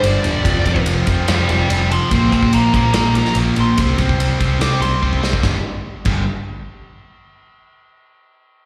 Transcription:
Already playing: overdriven electric guitar A#3
0.02 picked electric bass G1, overdriven electric guitar G2 D3 G3, ride
0.06 lead electric guitar D5
0.22 picked electric bass E1, overdriven electric guitar G2 D3 G3, ride
0.43 picked electric bass F1, overdriven electric guitar F2 C3 F3, kick, ride
0.65 picked electric bass F1, overdriven electric guitar F2 C3 F3, kick, ride
0.76 kick
0.86 picked electric bass F1, overdriven electric guitar F2 C3 F3, ride
1.07 picked electric bass F1, overdriven electric guitar F2 C3 F3, kick, ride
1.28 overdriven electric guitar F2 C3 F3, picked electric bass F2, lead electric guitar D5 G5, snare, ride
1.48 picked electric bass F1, overdriven electric guitar F2 C3 F3, lead electric guitar D5 G5, ride
1.68 picked electric bass F1, overdriven electric guitar F2 C3 F3, lead electric guitar D5, ride
1.72 lead electric guitar G5
1.89 overdriven electric guitar F2 C3 F3, lead electric guitar A5 C6, ride
2.10 picked electric bass A#1, overdriven electric guitar A#2 F3 A#3, kick, ride
2.14 lead electric guitar G5 C6
2.31 picked electric bass A#1, overdriven electric guitar A#2 F3 A#3, lead electric guitar G5 C6, kick, ride
2.43 kick
2.52 picked electric bass A#1, overdriven electric guitar A#2 F3 A#3, lead electric guitar A#5 D6, ride
2.73 picked electric bass A#1, overdriven electric guitar A#2 F3 A#3, lead electric guitar A#5 D6, kick, ride
2.94 picked electric bass A#1, overdriven electric guitar A#2 F3 A#3, lead electric guitar A#5 D6, snare, ride
3.14 overdriven electric guitar A#2 F3 A#3, lead electric guitar A#5, ride
3.26 snare
3.35 picked electric bass A#1, overdriven electric guitar A#2 F3 A#3, ride
3.56 picked electric bass A#1, overdriven electric guitar A#2 F3 A#3, ride
3.60 lead electric guitar C6
3.77 picked electric bass C2, overdriven electric guitar C3 G3 C4, kick, ride
3.96 picked electric bass C2, overdriven electric guitar C3 G3 C4, kick, ride
4.09 kick
4.18 picked electric bass C2, overdriven electric guitar C3 G3 C4, ride
4.39 picked electric bass C2, overdriven electric guitar C3 G3 C4, kick, ride
4.59 overdriven electric guitar C3 G3 C4, picked electric bass C3, lead electric guitar D6, snare, ride
4.80 picked electric bass C2, overdriven electric guitar C3 G3 C4, lead electric guitar C6, ride
5.00 picked electric bass C2, overdriven electric guitar C3 G3 C4, kick
5.13 kick
5.21 overdriven electric guitar C3 G3 C4, snare
5.33 kick
5.43 picked electric bass G1, overdriven electric guitar G2 D3 G3, kick, snare
6.05 picked electric bass G1, overdriven electric guitar G2 D3 G3, kick, crash

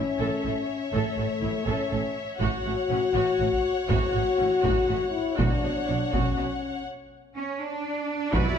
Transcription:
Already playing: french horn section C#4, violin section C#5 E5
0.19 double bass section A1, cello section A2, viola section A4
0.44 double bass section A1, cello section A2, viola section A4
0.93 double bass section A1, cello section A2, french horn section A3, viola section A4
1.18 double bass section A1, cello section A2, viola section A4
1.42 double bass section A1, cello section A2, viola section E4
1.66 double bass section A1, cello section A2, french horn section C#4, viola section A4
1.91 double bass section A1, cello section A2, viola section A4
2.39 double bass section A1, cello section A2, french horn section F#4, viola section F#4, violin section C#5 F#5, taiko
2.64 double bass section A1, cello section A2, viola section F#4
2.90 double bass section A1, cello section A2, viola section C#4
3.14 double bass section A1, cello section A2, viola section F#4
3.38 double bass section A1, cello section A2, viola section F#4
3.53 taiko
3.88 double bass section A1, cello section A2, viola section F#4, french horn section F#4, taiko
4.13 double bass section A1, cello section A2, viola section F#4
4.37 double bass section A1, cello section A2, viola section C#4
4.63 double bass section A1, cello section A2, viola section F#4, taiko
4.87 double bass section A1, cello section A2, viola section F#4
5.11 french horn section E4
5.36 double bass section B1, timpani B2, cello section B2, french horn section D4, viola section F#4, violin section C#5 F#5, taiko
5.63 double bass section B1, cello section B2, viola section F#4
5.87 double bass section B1, cello section B2, viola section D4
6.11 double bass section B1, cello section B2, french horn section C#4, viola section F#4, taiko
6.36 double bass section B1, cello section B2, viola section F#4
7.35 cello section C#4, french horn section C#4
7.60 cello section D4, french horn section D4
8.32 double bass section B1, trombone section F#3 B3, cello section E4, french horn section E4, viola section F#4 B4, violin section D5 B5, taiko

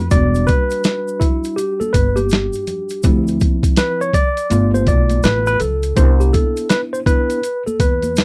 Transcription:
0.10 upright bass E1, tine electric piano G3 D4 F#4 D5, kick, closed hi-hat, shaker
0.35 closed hi-hat, shaker
0.47 tine electric piano B4, kick, closed hi-hat, high conga, shaker
0.70 closed hi-hat, shaker
0.84 snare, closed hi-hat, shaker
1.08 shaker
1.20 tine electric piano E4, kick, closed hi-hat, low conga, shaker
1.44 closed hi-hat, shaker
1.56 tine electric piano G4, closed hi-hat, shaker
1.80 tine electric piano A4, high conga, shaker
1.93 upright bass G1, tine electric piano B4, kick, closed hi-hat, shaker
2.16 tine electric piano G4, closed hi-hat, high conga, shaker
2.29 snare, closed hi-hat, shaker
2.53 closed hi-hat, shaker
2.67 closed hi-hat, low conga, shaker
2.89 closed hi-hat, shaker
3.03 upright bass D2, tine electric piano F3 C4 E4, kick, closed hi-hat, shaker
3.27 closed hi-hat, shaker
3.40 kick, closed hi-hat, high conga, shaker
3.63 kick, closed hi-hat, shaker
3.76 tine electric piano B4, snare, closed hi-hat, shaker
4.01 tine electric piano C#5, shaker
4.13 tine electric piano D5, kick, closed hi-hat, low conga, shaker
4.37 closed hi-hat, shaker
4.50 upright bass G1, tine electric piano A3 B3 F4, closed hi-hat, shaker
4.74 tine electric piano C5, high conga, shaker
4.87 upright bass B1, tine electric piano D5, kick, closed hi-hat, shaker
5.10 closed hi-hat, high conga, shaker
5.23 upright bass A1, tine electric piano B4, snare, closed hi-hat, shaker
5.47 tine electric piano B4, closed hi-hat, shaker
5.60 upright bass C#2, tine electric piano A4, closed hi-hat, low conga, shaker
5.83 closed hi-hat, shaker
5.96 upright bass C2, tine electric piano B3 D4 E4 C5, kick, closed hi-hat, shaker
6.20 tine electric piano G4, closed hi-hat, shaker
6.33 tine electric piano A4, kick, closed hi-hat, high conga, shaker
6.57 closed hi-hat, shaker
6.69 tine electric piano B4, snare, closed hi-hat, shaker
6.93 tine electric piano C5, shaker
7.06 tine electric piano B3 D4 E4 B4, kick, closed hi-hat, low conga, shaker
7.30 closed hi-hat, shaker
7.43 closed hi-hat, shaker
7.66 tine electric piano A4, high conga, shaker
7.80 upright bass E2, tine electric piano B4, kick, closed hi-hat, shaker
8.02 closed hi-hat, high conga, shaker
8.16 snare, closed hi-hat, shaker

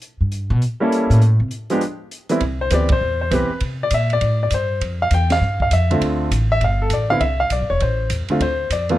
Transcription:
0.02 closed hi-hat
0.21 upright bass G2
0.32 closed hi-hat
0.50 upright bass B2
0.62 closed hi-hat
0.80 grand piano G3 A#3 C#4 E4 A4
0.92 closed hi-hat
1.10 upright bass A2, closed hi-hat
1.22 closed hi-hat
1.40 upright bass C3
1.51 closed hi-hat
1.70 grand piano F3 G#3 B3 D4 G4, closed hi-hat
1.81 closed hi-hat
2.11 closed hi-hat
2.29 grand piano E3 G3 B3 C4 E4, closed hi-hat
2.40 upright bass C2, kick, ride
2.61 grand piano C5
2.70 upright bass D2, grand piano E3 B3 C4 G4, kick, hi-hat pedal, ride
2.75 grand piano D5
2.89 grand piano C5, kick, ride
3.01 upright bass E2
3.21 grand piano C5
3.31 upright bass C2, grand piano E3 B3 C4 G4 B4, kick, hi-hat pedal, ride
3.50 muted upright bass stroke
3.60 upright bass C3, kick, ride
3.83 grand piano D5
3.91 upright bass A#2, grand piano E5, kick, hi-hat pedal, ride
4.10 grand piano D5, ride
4.21 upright bass A2, kick, ride
4.43 grand piano D5
4.50 upright bass G2, grand piano C5, kick, hi-hat pedal, ride
4.81 upright bass F2, kick, ride
5.02 grand piano F5
5.11 upright bass E2, grand piano G5, kick, hi-hat pedal, ride
5.30 grand piano F5, snare, ride
5.41 upright bass G2
5.60 grand piano F5, kick
5.71 upright bass F2, grand piano E5, kick, hi-hat pedal, ride
5.91 grand piano D3 A3 C4 F4, ride
6.01 upright bass D2, kick, ride
6.31 upright bass A1, kick, hi-hat pedal, ride
6.52 grand piano E5
6.61 upright bass G1, grand piano F5, kick, ride
6.82 grand piano A4
6.90 upright bass A1, grand piano D5, kick, hi-hat pedal, ride
7.10 grand piano D3 B3 C4 E4 F5
7.20 upright bass C2, grand piano E5, kick, ride
7.40 grand piano F5
7.50 upright bass B1, grand piano D5, kick, hi-hat pedal, ride
7.60 upright bass G1
7.70 upright bass E1, grand piano C#5
7.80 upright bass A1, grand piano C5, kick, ride
8.10 upright bass E2, kick, hi-hat pedal, ride
8.28 grand piano D3 A3 C4 F4, muted upright bass stroke, ride
8.40 upright bass D2, grand piano C5, kick, ride
8.70 upright bass F2, grand piano D5, kick, hi-hat pedal, ride
8.89 grand piano E3 A3 B3 F4, ride

